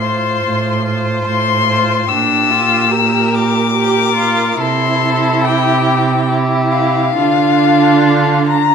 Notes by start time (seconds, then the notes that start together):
Already playing: A2 C6
0.01 F4 C5
0.44 A2
0.83 F4 C5
1.24 A2 C6
1.66 F4 C5
2.08 A#2 D4 G4 E6
2.50 F4
2.90 G4 A#4
3.34 D6
3.71 G4 A#4
4.15 F4
4.57 C3 E4 A4 C6
5.45 G4 G5
6.29 E4 G4
6.72 F5
7.15 D3 D4 F4
8.49 A#5